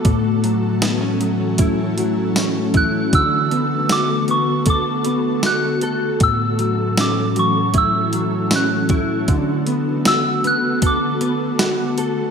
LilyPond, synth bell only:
\new Staff \with { instrumentName = "Synth bell" } { \time 4/4 \key a \major \tempo 4 = 78 r2. r8 fis'''8 | e'''4 d'''8 cis'''8 d'''4 fis'''8. r16 | e'''4 d'''8 cis'''8 e'''4 fis'''8. r16 | r4 e'''8 fis'''8 d'''4 r4 | }